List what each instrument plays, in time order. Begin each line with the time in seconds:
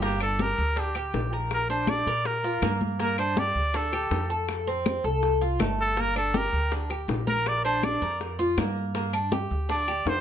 Already playing: upright bass G1
0.02 cuban tres A#3, trumpet G4, high bongo, high conga, maracas
0.20 cuban tres D4, trumpet A4, high conga, claves
0.39 cuban tres G4, trumpet A#4, high bongo, high conga, maracas
0.57 upright bass D2, high conga, maracas
0.76 cuban tres D4, trumpet G4, high bongo, high conga, maracas
0.94 cuban tres G4, high conga, claves, maracas
1.13 upright bass A#1, high bongo, low bongo, high conga, maracas
1.32 cuban tres A#4, maracas
1.50 trumpet A#4, high bongo, high conga, claves, maracas
1.69 cuban tres D4, trumpet C5, high bongo, high conga
1.87 trumpet D5, high bongo, high conga, claves, maracas
2.06 upright bass A#2, cuban tres A#4, high bongo, high conga, maracas
2.25 trumpet A#4, high bongo, high conga, maracas
2.44 cuban tres F4, high conga
2.62 upright bass G2, cuban tres A#3, high bongo, low bongo, high conga, claves, maracas
2.81 high bongo, high conga, maracas
2.99 cuban tres A#3, trumpet A#4, high bongo, high conga, maracas
3.18 cuban tres D4, trumpet C5, high conga, claves, maracas
3.36 cuban tres G4, trumpet D5, high bongo, high conga, maracas
3.55 upright bass D2, high conga, maracas
3.74 cuban tres D4, trumpet A4, high bongo, high conga, maracas
3.93 cuban tres G4, high conga, claves
4.11 upright bass F2, high bongo, low bongo, high conga, maracas
4.29 cuban tres A4, maracas
4.48 high bongo, high conga, claves, maracas
4.67 cuban tres C4, high bongo, high conga
4.86 high bongo, high conga, claves, maracas
5.04 upright bass C2, cuban tres A4, high bongo, high conga, maracas
5.23 high bongo, high conga, maracas
5.41 cuban tres F4, high conga, maracas
5.59 upright bass G1, cuban tres A3, high bongo, low bongo, high conga, claves, maracas
5.78 trumpet A4, high bongo, maracas
5.97 cuban tres A#3, trumpet A#4, high bongo, high conga, maracas
6.16 cuban tres D4, trumpet A4, high conga, claves
6.34 cuban tres G4, trumpet A#4, high bongo, high conga, maracas
6.53 upright bass D2, high conga, maracas
6.72 cuban tres D4, high bongo, high conga, maracas
6.90 cuban tres G4, high conga, claves
7.08 upright bass A#1, high bongo, low bongo, high conga, maracas
7.27 cuban tres A#4, trumpet A#4, high conga, maracas
7.46 trumpet D5, high bongo, high conga, claves, maracas
7.65 cuban tres D4, trumpet C5, high bongo, high conga
7.83 trumpet D5, high bongo, high conga, claves, maracas
8.01 upright bass F2, cuban tres A#4, high bongo, high conga, maracas
8.21 high bongo, high conga, maracas
8.39 cuban tres F4, high conga
8.57 upright bass G2, cuban tres A#3, high bongo, low bongo, high conga, claves, maracas
8.76 high bongo, maracas
8.95 cuban tres A#3, high bongo, high conga, maracas
9.13 cuban tres D4, high conga, claves, maracas
9.32 cuban tres G4, high bongo, high conga, maracas
9.50 upright bass D2, high conga, maracas
9.69 cuban tres D4, trumpet D5, high bongo, high conga, maracas
9.87 cuban tres G4, high conga, claves, maracas
10.05 upright bass F2, trumpet C5, high bongo, low bongo, high conga, maracas